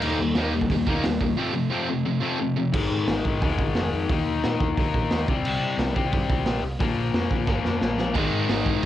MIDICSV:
0, 0, Header, 1, 5, 480
1, 0, Start_track
1, 0, Tempo, 338983
1, 27, Time_signature, 4, 2, 24, 8
1, 12539, End_track
2, 0, Start_track
2, 0, Title_t, "Distorted electric guitar"
2, 0, Program_c, 0, 30
2, 20, Note_on_c, 0, 51, 90
2, 37, Note_on_c, 0, 55, 96
2, 40, Note_on_c, 0, 58, 116
2, 250, Note_off_c, 0, 51, 0
2, 258, Note_off_c, 0, 55, 0
2, 260, Note_off_c, 0, 58, 0
2, 278, Note_on_c, 0, 51, 76
2, 283, Note_on_c, 0, 55, 83
2, 490, Note_off_c, 0, 51, 0
2, 492, Note_off_c, 0, 55, 0
2, 506, Note_on_c, 0, 51, 84
2, 525, Note_on_c, 0, 55, 98
2, 532, Note_on_c, 0, 58, 107
2, 734, Note_off_c, 0, 51, 0
2, 743, Note_off_c, 0, 55, 0
2, 747, Note_off_c, 0, 58, 0
2, 765, Note_on_c, 0, 51, 75
2, 771, Note_on_c, 0, 55, 93
2, 974, Note_off_c, 0, 51, 0
2, 976, Note_off_c, 0, 55, 0
2, 1009, Note_on_c, 0, 55, 101
2, 1014, Note_on_c, 0, 51, 87
2, 1204, Note_off_c, 0, 51, 0
2, 1211, Note_off_c, 0, 55, 0
2, 1221, Note_on_c, 0, 51, 83
2, 1228, Note_on_c, 0, 55, 89
2, 1234, Note_on_c, 0, 58, 93
2, 1446, Note_off_c, 0, 51, 0
2, 1456, Note_off_c, 0, 55, 0
2, 1459, Note_off_c, 0, 58, 0
2, 1463, Note_on_c, 0, 51, 87
2, 1479, Note_on_c, 0, 55, 85
2, 1683, Note_off_c, 0, 51, 0
2, 1692, Note_off_c, 0, 55, 0
2, 1711, Note_on_c, 0, 55, 77
2, 1712, Note_on_c, 0, 51, 70
2, 1928, Note_off_c, 0, 55, 0
2, 1929, Note_off_c, 0, 51, 0
2, 1940, Note_on_c, 0, 53, 94
2, 1952, Note_on_c, 0, 57, 96
2, 1960, Note_on_c, 0, 60, 116
2, 2163, Note_off_c, 0, 53, 0
2, 2166, Note_off_c, 0, 57, 0
2, 2180, Note_on_c, 0, 53, 71
2, 2182, Note_off_c, 0, 60, 0
2, 2183, Note_on_c, 0, 57, 87
2, 2390, Note_off_c, 0, 53, 0
2, 2404, Note_off_c, 0, 57, 0
2, 2407, Note_on_c, 0, 53, 88
2, 2422, Note_on_c, 0, 57, 99
2, 2437, Note_on_c, 0, 60, 107
2, 2646, Note_off_c, 0, 53, 0
2, 2654, Note_off_c, 0, 57, 0
2, 2661, Note_off_c, 0, 60, 0
2, 2671, Note_on_c, 0, 53, 74
2, 2675, Note_on_c, 0, 57, 84
2, 2888, Note_off_c, 0, 53, 0
2, 2891, Note_off_c, 0, 57, 0
2, 2908, Note_on_c, 0, 53, 86
2, 2908, Note_on_c, 0, 57, 99
2, 3106, Note_off_c, 0, 53, 0
2, 3118, Note_off_c, 0, 57, 0
2, 3123, Note_on_c, 0, 53, 89
2, 3135, Note_on_c, 0, 57, 89
2, 3145, Note_on_c, 0, 60, 98
2, 3357, Note_off_c, 0, 53, 0
2, 3359, Note_off_c, 0, 57, 0
2, 3374, Note_on_c, 0, 53, 77
2, 3375, Note_off_c, 0, 60, 0
2, 3376, Note_on_c, 0, 57, 93
2, 3601, Note_off_c, 0, 53, 0
2, 3601, Note_off_c, 0, 57, 0
2, 3627, Note_on_c, 0, 53, 78
2, 3634, Note_on_c, 0, 57, 82
2, 3847, Note_off_c, 0, 53, 0
2, 3851, Note_off_c, 0, 57, 0
2, 11523, Note_on_c, 0, 44, 104
2, 11536, Note_on_c, 0, 51, 100
2, 11549, Note_on_c, 0, 56, 112
2, 11565, Note_on_c, 0, 60, 92
2, 11576, Note_on_c, 0, 63, 102
2, 12539, Note_off_c, 0, 44, 0
2, 12539, Note_off_c, 0, 51, 0
2, 12539, Note_off_c, 0, 56, 0
2, 12539, Note_off_c, 0, 60, 0
2, 12539, Note_off_c, 0, 63, 0
2, 12539, End_track
3, 0, Start_track
3, 0, Title_t, "Distorted electric guitar"
3, 0, Program_c, 1, 30
3, 40, Note_on_c, 1, 51, 87
3, 42, Note_on_c, 1, 58, 97
3, 55, Note_on_c, 1, 63, 101
3, 260, Note_off_c, 1, 51, 0
3, 261, Note_off_c, 1, 58, 0
3, 267, Note_off_c, 1, 63, 0
3, 286, Note_on_c, 1, 51, 75
3, 290, Note_on_c, 1, 58, 88
3, 494, Note_off_c, 1, 51, 0
3, 496, Note_off_c, 1, 58, 0
3, 528, Note_on_c, 1, 51, 84
3, 531, Note_on_c, 1, 58, 99
3, 542, Note_on_c, 1, 63, 107
3, 739, Note_off_c, 1, 51, 0
3, 746, Note_off_c, 1, 58, 0
3, 751, Note_off_c, 1, 63, 0
3, 756, Note_on_c, 1, 51, 83
3, 761, Note_on_c, 1, 58, 85
3, 969, Note_off_c, 1, 51, 0
3, 972, Note_off_c, 1, 58, 0
3, 994, Note_on_c, 1, 51, 86
3, 1009, Note_on_c, 1, 58, 97
3, 1208, Note_off_c, 1, 51, 0
3, 1216, Note_off_c, 1, 58, 0
3, 1248, Note_on_c, 1, 51, 100
3, 1260, Note_on_c, 1, 58, 102
3, 1275, Note_on_c, 1, 63, 111
3, 1466, Note_off_c, 1, 51, 0
3, 1471, Note_off_c, 1, 58, 0
3, 1479, Note_off_c, 1, 63, 0
3, 1497, Note_on_c, 1, 51, 83
3, 1508, Note_on_c, 1, 58, 86
3, 1697, Note_off_c, 1, 51, 0
3, 1706, Note_off_c, 1, 58, 0
3, 1714, Note_on_c, 1, 51, 71
3, 1723, Note_on_c, 1, 58, 76
3, 1929, Note_off_c, 1, 51, 0
3, 1934, Note_off_c, 1, 58, 0
3, 1942, Note_on_c, 1, 41, 92
3, 1948, Note_on_c, 1, 48, 97
3, 1955, Note_on_c, 1, 53, 94
3, 2159, Note_off_c, 1, 41, 0
3, 2160, Note_off_c, 1, 48, 0
3, 2176, Note_on_c, 1, 41, 71
3, 2177, Note_on_c, 1, 48, 83
3, 2180, Note_off_c, 1, 53, 0
3, 2401, Note_off_c, 1, 41, 0
3, 2401, Note_off_c, 1, 48, 0
3, 2427, Note_on_c, 1, 41, 99
3, 2430, Note_on_c, 1, 48, 95
3, 2443, Note_on_c, 1, 53, 105
3, 2656, Note_off_c, 1, 41, 0
3, 2658, Note_off_c, 1, 48, 0
3, 2664, Note_off_c, 1, 53, 0
3, 2671, Note_on_c, 1, 41, 84
3, 2682, Note_on_c, 1, 48, 90
3, 2889, Note_off_c, 1, 41, 0
3, 2894, Note_off_c, 1, 48, 0
3, 2904, Note_on_c, 1, 41, 79
3, 2912, Note_on_c, 1, 48, 85
3, 3125, Note_off_c, 1, 41, 0
3, 3129, Note_off_c, 1, 48, 0
3, 3141, Note_on_c, 1, 41, 90
3, 3151, Note_on_c, 1, 48, 106
3, 3159, Note_on_c, 1, 53, 114
3, 3373, Note_off_c, 1, 41, 0
3, 3378, Note_off_c, 1, 48, 0
3, 3382, Note_off_c, 1, 53, 0
3, 3414, Note_on_c, 1, 41, 83
3, 3418, Note_on_c, 1, 48, 94
3, 3620, Note_off_c, 1, 41, 0
3, 3622, Note_off_c, 1, 48, 0
3, 3645, Note_on_c, 1, 41, 76
3, 3649, Note_on_c, 1, 48, 86
3, 3854, Note_off_c, 1, 41, 0
3, 3858, Note_off_c, 1, 48, 0
3, 3859, Note_on_c, 1, 44, 93
3, 3892, Note_on_c, 1, 51, 102
3, 3904, Note_on_c, 1, 56, 95
3, 4813, Note_off_c, 1, 44, 0
3, 4829, Note_off_c, 1, 51, 0
3, 4835, Note_off_c, 1, 56, 0
3, 4836, Note_on_c, 1, 44, 87
3, 4860, Note_on_c, 1, 51, 87
3, 4874, Note_on_c, 1, 56, 94
3, 5781, Note_off_c, 1, 44, 0
3, 5789, Note_off_c, 1, 51, 0
3, 5800, Note_off_c, 1, 56, 0
3, 5806, Note_on_c, 1, 51, 85
3, 5828, Note_on_c, 1, 58, 93
3, 5848, Note_on_c, 1, 63, 99
3, 6736, Note_off_c, 1, 51, 0
3, 6753, Note_on_c, 1, 51, 90
3, 6757, Note_off_c, 1, 58, 0
3, 6773, Note_on_c, 1, 58, 84
3, 6790, Note_off_c, 1, 63, 0
3, 6796, Note_on_c, 1, 63, 85
3, 7458, Note_off_c, 1, 51, 0
3, 7469, Note_off_c, 1, 58, 0
3, 7479, Note_on_c, 1, 48, 96
3, 7480, Note_off_c, 1, 63, 0
3, 7502, Note_on_c, 1, 55, 99
3, 7527, Note_on_c, 1, 60, 113
3, 8410, Note_off_c, 1, 60, 0
3, 8422, Note_off_c, 1, 48, 0
3, 8427, Note_on_c, 1, 60, 103
3, 8433, Note_off_c, 1, 55, 0
3, 8452, Note_on_c, 1, 55, 83
3, 8468, Note_on_c, 1, 48, 76
3, 9375, Note_off_c, 1, 60, 0
3, 9387, Note_off_c, 1, 55, 0
3, 9395, Note_off_c, 1, 48, 0
3, 9619, Note_on_c, 1, 46, 96
3, 9635, Note_on_c, 1, 53, 101
3, 9656, Note_on_c, 1, 58, 102
3, 10555, Note_off_c, 1, 46, 0
3, 10572, Note_on_c, 1, 46, 81
3, 10573, Note_off_c, 1, 53, 0
3, 10589, Note_off_c, 1, 58, 0
3, 10590, Note_on_c, 1, 53, 90
3, 10609, Note_on_c, 1, 58, 101
3, 11527, Note_off_c, 1, 46, 0
3, 11536, Note_off_c, 1, 53, 0
3, 11537, Note_on_c, 1, 44, 86
3, 11545, Note_off_c, 1, 58, 0
3, 11568, Note_on_c, 1, 51, 92
3, 11589, Note_on_c, 1, 56, 95
3, 12467, Note_off_c, 1, 44, 0
3, 12484, Note_on_c, 1, 44, 79
3, 12495, Note_off_c, 1, 51, 0
3, 12515, Note_off_c, 1, 56, 0
3, 12539, Note_off_c, 1, 44, 0
3, 12539, End_track
4, 0, Start_track
4, 0, Title_t, "Picked electric bass"
4, 0, Program_c, 2, 34
4, 44, Note_on_c, 2, 39, 91
4, 204, Note_off_c, 2, 39, 0
4, 275, Note_on_c, 2, 39, 93
4, 438, Note_off_c, 2, 39, 0
4, 512, Note_on_c, 2, 39, 96
4, 842, Note_off_c, 2, 39, 0
4, 992, Note_on_c, 2, 39, 93
4, 1157, Note_off_c, 2, 39, 0
4, 1232, Note_on_c, 2, 39, 93
4, 1397, Note_off_c, 2, 39, 0
4, 1480, Note_on_c, 2, 39, 93
4, 1642, Note_off_c, 2, 39, 0
4, 1707, Note_on_c, 2, 39, 104
4, 1874, Note_off_c, 2, 39, 0
4, 3875, Note_on_c, 2, 32, 93
4, 4040, Note_off_c, 2, 32, 0
4, 4121, Note_on_c, 2, 44, 95
4, 4285, Note_off_c, 2, 44, 0
4, 4352, Note_on_c, 2, 32, 101
4, 4518, Note_off_c, 2, 32, 0
4, 4598, Note_on_c, 2, 44, 89
4, 4763, Note_off_c, 2, 44, 0
4, 4852, Note_on_c, 2, 39, 98
4, 5012, Note_off_c, 2, 39, 0
4, 5081, Note_on_c, 2, 32, 94
4, 5245, Note_off_c, 2, 32, 0
4, 5334, Note_on_c, 2, 29, 100
4, 5493, Note_off_c, 2, 29, 0
4, 5567, Note_on_c, 2, 41, 100
4, 5728, Note_off_c, 2, 41, 0
4, 5802, Note_on_c, 2, 39, 97
4, 5965, Note_off_c, 2, 39, 0
4, 6051, Note_on_c, 2, 39, 93
4, 6211, Note_off_c, 2, 39, 0
4, 6293, Note_on_c, 2, 46, 101
4, 6452, Note_off_c, 2, 46, 0
4, 6523, Note_on_c, 2, 39, 88
4, 6686, Note_off_c, 2, 39, 0
4, 6765, Note_on_c, 2, 36, 100
4, 6927, Note_off_c, 2, 36, 0
4, 6997, Note_on_c, 2, 46, 94
4, 7162, Note_off_c, 2, 46, 0
4, 7252, Note_on_c, 2, 39, 102
4, 7411, Note_off_c, 2, 39, 0
4, 7483, Note_on_c, 2, 36, 107
4, 7645, Note_off_c, 2, 36, 0
4, 7707, Note_on_c, 2, 36, 104
4, 7875, Note_off_c, 2, 36, 0
4, 7934, Note_on_c, 2, 48, 99
4, 8106, Note_off_c, 2, 48, 0
4, 8179, Note_on_c, 2, 36, 93
4, 8349, Note_off_c, 2, 36, 0
4, 8442, Note_on_c, 2, 48, 88
4, 8604, Note_off_c, 2, 48, 0
4, 8673, Note_on_c, 2, 43, 102
4, 8839, Note_off_c, 2, 43, 0
4, 8915, Note_on_c, 2, 36, 94
4, 9080, Note_off_c, 2, 36, 0
4, 9149, Note_on_c, 2, 34, 99
4, 9316, Note_off_c, 2, 34, 0
4, 9386, Note_on_c, 2, 36, 104
4, 9554, Note_off_c, 2, 36, 0
4, 9634, Note_on_c, 2, 34, 97
4, 9799, Note_off_c, 2, 34, 0
4, 9861, Note_on_c, 2, 34, 93
4, 10030, Note_off_c, 2, 34, 0
4, 10104, Note_on_c, 2, 41, 97
4, 10272, Note_off_c, 2, 41, 0
4, 10349, Note_on_c, 2, 34, 90
4, 10515, Note_off_c, 2, 34, 0
4, 10594, Note_on_c, 2, 32, 92
4, 10758, Note_off_c, 2, 32, 0
4, 10827, Note_on_c, 2, 41, 90
4, 10994, Note_off_c, 2, 41, 0
4, 11065, Note_on_c, 2, 34, 97
4, 11232, Note_off_c, 2, 34, 0
4, 11300, Note_on_c, 2, 34, 104
4, 11469, Note_off_c, 2, 34, 0
4, 11546, Note_on_c, 2, 32, 91
4, 11713, Note_off_c, 2, 32, 0
4, 11800, Note_on_c, 2, 44, 90
4, 11962, Note_off_c, 2, 44, 0
4, 12029, Note_on_c, 2, 32, 99
4, 12195, Note_off_c, 2, 32, 0
4, 12263, Note_on_c, 2, 44, 85
4, 12431, Note_off_c, 2, 44, 0
4, 12539, End_track
5, 0, Start_track
5, 0, Title_t, "Drums"
5, 21, Note_on_c, 9, 49, 99
5, 163, Note_off_c, 9, 49, 0
5, 492, Note_on_c, 9, 46, 60
5, 498, Note_on_c, 9, 38, 113
5, 634, Note_off_c, 9, 46, 0
5, 639, Note_off_c, 9, 38, 0
5, 867, Note_on_c, 9, 36, 87
5, 987, Note_on_c, 9, 46, 68
5, 989, Note_off_c, 9, 36, 0
5, 989, Note_on_c, 9, 36, 97
5, 1129, Note_off_c, 9, 46, 0
5, 1131, Note_off_c, 9, 36, 0
5, 1228, Note_on_c, 9, 36, 91
5, 1369, Note_off_c, 9, 36, 0
5, 1463, Note_on_c, 9, 46, 66
5, 1469, Note_on_c, 9, 38, 121
5, 1605, Note_off_c, 9, 46, 0
5, 1611, Note_off_c, 9, 38, 0
5, 1708, Note_on_c, 9, 36, 87
5, 1849, Note_off_c, 9, 36, 0
5, 3872, Note_on_c, 9, 49, 126
5, 3877, Note_on_c, 9, 36, 119
5, 4014, Note_off_c, 9, 49, 0
5, 4018, Note_off_c, 9, 36, 0
5, 4352, Note_on_c, 9, 46, 69
5, 4358, Note_on_c, 9, 38, 115
5, 4494, Note_off_c, 9, 46, 0
5, 4499, Note_off_c, 9, 38, 0
5, 4603, Note_on_c, 9, 36, 95
5, 4744, Note_off_c, 9, 36, 0
5, 4842, Note_on_c, 9, 36, 117
5, 4850, Note_on_c, 9, 46, 72
5, 4984, Note_off_c, 9, 36, 0
5, 4991, Note_off_c, 9, 46, 0
5, 5079, Note_on_c, 9, 36, 93
5, 5220, Note_off_c, 9, 36, 0
5, 5308, Note_on_c, 9, 46, 74
5, 5313, Note_on_c, 9, 38, 123
5, 5449, Note_off_c, 9, 46, 0
5, 5455, Note_off_c, 9, 38, 0
5, 5794, Note_on_c, 9, 46, 67
5, 5799, Note_on_c, 9, 36, 111
5, 5936, Note_off_c, 9, 46, 0
5, 5941, Note_off_c, 9, 36, 0
5, 6281, Note_on_c, 9, 46, 70
5, 6286, Note_on_c, 9, 38, 124
5, 6422, Note_off_c, 9, 46, 0
5, 6428, Note_off_c, 9, 38, 0
5, 6521, Note_on_c, 9, 36, 95
5, 6663, Note_off_c, 9, 36, 0
5, 6762, Note_on_c, 9, 36, 111
5, 6766, Note_on_c, 9, 46, 65
5, 6904, Note_off_c, 9, 36, 0
5, 6908, Note_off_c, 9, 46, 0
5, 6999, Note_on_c, 9, 36, 96
5, 7141, Note_off_c, 9, 36, 0
5, 7229, Note_on_c, 9, 46, 67
5, 7235, Note_on_c, 9, 38, 120
5, 7371, Note_off_c, 9, 46, 0
5, 7377, Note_off_c, 9, 38, 0
5, 7481, Note_on_c, 9, 36, 103
5, 7622, Note_off_c, 9, 36, 0
5, 7716, Note_on_c, 9, 57, 108
5, 7858, Note_off_c, 9, 57, 0
5, 8193, Note_on_c, 9, 46, 72
5, 8198, Note_on_c, 9, 38, 120
5, 8334, Note_off_c, 9, 46, 0
5, 8340, Note_off_c, 9, 38, 0
5, 8440, Note_on_c, 9, 36, 99
5, 8581, Note_off_c, 9, 36, 0
5, 8667, Note_on_c, 9, 46, 73
5, 8677, Note_on_c, 9, 36, 120
5, 8809, Note_off_c, 9, 46, 0
5, 8818, Note_off_c, 9, 36, 0
5, 8914, Note_on_c, 9, 36, 97
5, 9055, Note_off_c, 9, 36, 0
5, 9141, Note_on_c, 9, 46, 75
5, 9147, Note_on_c, 9, 38, 118
5, 9283, Note_off_c, 9, 46, 0
5, 9288, Note_off_c, 9, 38, 0
5, 9630, Note_on_c, 9, 46, 69
5, 9633, Note_on_c, 9, 36, 117
5, 9772, Note_off_c, 9, 46, 0
5, 9775, Note_off_c, 9, 36, 0
5, 10107, Note_on_c, 9, 46, 73
5, 10112, Note_on_c, 9, 38, 123
5, 10248, Note_off_c, 9, 46, 0
5, 10254, Note_off_c, 9, 38, 0
5, 10347, Note_on_c, 9, 36, 93
5, 10488, Note_off_c, 9, 36, 0
5, 10583, Note_on_c, 9, 36, 118
5, 10584, Note_on_c, 9, 38, 72
5, 10725, Note_off_c, 9, 36, 0
5, 10725, Note_off_c, 9, 38, 0
5, 10833, Note_on_c, 9, 38, 75
5, 10975, Note_off_c, 9, 38, 0
5, 11066, Note_on_c, 9, 38, 103
5, 11208, Note_off_c, 9, 38, 0
5, 11305, Note_on_c, 9, 38, 104
5, 11447, Note_off_c, 9, 38, 0
5, 11543, Note_on_c, 9, 36, 111
5, 11547, Note_on_c, 9, 57, 105
5, 11684, Note_off_c, 9, 36, 0
5, 11689, Note_off_c, 9, 57, 0
5, 12023, Note_on_c, 9, 46, 66
5, 12029, Note_on_c, 9, 38, 121
5, 12165, Note_off_c, 9, 46, 0
5, 12170, Note_off_c, 9, 38, 0
5, 12263, Note_on_c, 9, 36, 89
5, 12405, Note_off_c, 9, 36, 0
5, 12539, End_track
0, 0, End_of_file